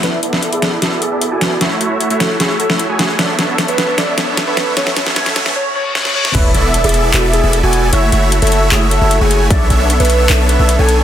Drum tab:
CC |--------------------------------|--------------------------------|--------------------------------|--------------------------------|
HH |x---x---x-x-x---x---x---x---x---|x---x---x-x-x---x---x---x---x---|x---x---x-x-x---x---x---x---x---|x---x---x-x-x-------------------|
CP |--------------------------------|--------------------------------|--------------------------------|--------------------------------|
SD |o-----o-----o---o-----------o---|o-----------o---o-----o-----o---|o---o---o---o---o---o---o---o---|o-o-o-o-o-o-o-o---------o-o---o-|
BD |--------------------------------|--------------------------------|--------------------------------|--------------------------------|

CC |x-------------------------------|--------------------------------|--------------------------------|
HH |x---x---x-xxx---x---x---x---x---|x---x---x-xxx---x---x---x---x---|x---x---x-xxx---x---x---x---x---|
CP |----------------x---------------|----------------x---------------|----------------x---------------|
SD |--------------------------------|--------------------------------|--------------------------------|
BD |o-------------------------------|--------------------------------|o-------------------------------|